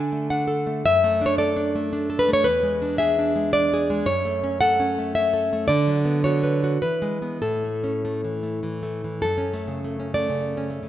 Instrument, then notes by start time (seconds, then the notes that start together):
nylon-string guitar
Already playing: D3 D4 A4 G#5
0.12 A3
0.30 D4 F#5
0.47 A4
0.67 A3
0.86 F#2 E5
1.04 A3
1.21 D4
1.26 C#5
1.38 A4 D5
1.57 D4
1.75 A3
1.93 D4
2.10 A4
2.19 B4
2.29 A3
2.33 C#5
2.44 E2 B4
2.63 G#3
2.82 D4
2.98 G#4 E5
3.19 D4
3.36 G#3
3.53 D4 D5
3.74 G#4
3.90 G#3
4.06 F#2 C#5
4.25 A3
4.44 C#4
4.61 A4 F#5
4.80 C#4
4.98 A3
5.15 C#4 E5
5.34 A4
5.53 A3
5.68 D3 D5
5.88 F#3
6.05 B3
6.24 F#4 C#5
6.43 B4
6.64 F#4
6.82 E3 B4
7.02 G#3
7.22 G#3 B3
7.42 A2 A4
7.84 C#4
8.05 A3
8.24 E3
8.43 A3
8.63 E3
8.83 A3
9.04 E3
9.22 F#2 A4
9.38 C#4
9.54 A3
9.68 C#3
9.84 A3
10.00 C#4
10.14 A3 D5
10.30 C#3
10.57 C#4
10.70 A3
10.83 C#3